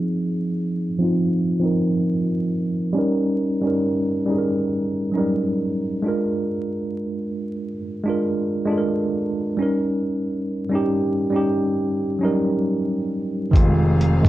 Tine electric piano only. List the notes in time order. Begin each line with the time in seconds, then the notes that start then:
Already playing: F3 C4 D#4 G#4
0.99 F3 C4 D#4
1.04 F4
1.60 F3 C4 D#4
1.65 A#4
2.93 G3 C#4 D#4
2.98 A#4
3.61 G3 C#4 D#4
3.67 A#4
4.26 G3 C#4 D#4
4.31 G#4
4.38 A#4
5.12 F#3 C#4 D#4
5.17 G3 A#4
6.03 G#3 D4 F4
6.08 A#4
8.04 G#3 D4 F4
8.09 A#4
8.65 G#3 D4 F4
8.71 A4
8.77 A#4
9.57 G3 C#4 D#4
9.62 A#4
10.69 G3 C#4 D#4
10.75 G4
11.30 G3 C#4 D#4
11.36 G4
12.19 F#3 C#4
12.23 G3 D#4 A#4
13.51 D#3 G#3 C4
13.57 F4
14.21 D#3 G#3 C4